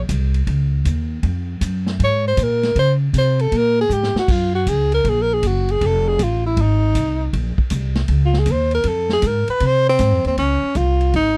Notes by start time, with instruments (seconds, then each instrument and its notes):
0.09 upright bass C2, kick, hi-hat pedal, ride
0.34 ride
0.47 upright bass C#2, kick, ride
0.85 upright bass D#2, kick, hi-hat pedal, ride
1.23 upright bass F2, kick, ride
1.61 upright bass F#2, kick, hi-hat pedal, ride
1.86 snare
1.99 upright bass G#2, kick, ride
2.04 tenor saxophone C#5
2.28 tenor saxophone C5
2.37 upright bass A#2, kick, hi-hat pedal, ride
2.43 tenor saxophone A#4
2.63 snare, ride
2.75 upright bass C#3, tenor saxophone C5, kick, ride
3.13 upright bass C3, kick, hi-hat pedal, ride
3.18 tenor saxophone C5
3.39 tenor saxophone A4, ride
3.52 upright bass A#2, kick, ride
3.57 tenor saxophone A#4
3.81 tenor saxophone G#4
3.89 upright bass G#2, tenor saxophone G4, hi-hat pedal
4.03 snare
4.14 muted upright bass stroke, snare
4.19 tenor saxophone F#4
4.28 upright bass F#2, tenor saxophone F4, kick, crash
4.55 tenor saxophone F#4
4.66 upright bass C#2, tenor saxophone G#4, kick, hi-hat pedal, ride
4.92 tenor saxophone A#4, ride
5.04 upright bass A#1, kick, ride
5.09 tenor saxophone G#4
5.22 tenor saxophone A#4
5.34 tenor saxophone G#4
5.43 upright bass F#1, kick, hi-hat pedal, ride
5.47 tenor saxophone F#4
5.68 tenor saxophone G#4, ride
5.81 upright bass F1, kick, ride
5.86 tenor saxophone A4
6.08 tenor saxophone G#4
6.19 upright bass A1, kick, hi-hat pedal, ride
6.23 tenor saxophone F4
6.46 tenor saxophone E4
6.57 upright bass G#1, kick, ride
6.62 tenor saxophone D#4
6.95 upright bass C2, kick, hi-hat pedal, ride
7.33 upright bass A#1, kick, ride
7.58 muted upright bass stroke, kick
7.70 upright bass C2, kick, hi-hat pedal, ride
7.95 snare, ride
8.08 upright bass C#2, kick, ride
8.26 tenor saxophone F4
8.33 snare
8.39 tenor saxophone G#4
8.46 upright bass D#2, kick, hi-hat pedal, ride
8.51 tenor saxophone C5
8.71 tenor saxophone A#4, ride
8.84 upright bass F2, kick, ride
8.88 tenor saxophone A4
9.09 tenor saxophone G#4, snare
9.22 upright bass G#2, kick, hi-hat pedal, ride
9.27 tenor saxophone A#4
9.48 tenor saxophone B4, muted upright bass stroke, ride
9.60 upright bass C3, kick, ride
9.66 tenor saxophone C5
9.89 tenor saxophone C4
9.99 upright bass G#2, kick, hi-hat pedal, ride
10.12 upright bass F2
10.25 upright bass D#2, tenor saxophone C4, ride
10.37 upright bass C#2, tenor saxophone C#4, kick, ride
10.63 muted upright bass stroke
10.75 upright bass C2, tenor saxophone F4, kick, hi-hat pedal, ride
11.01 ride
11.13 upright bass G#1, tenor saxophone D#4, kick, ride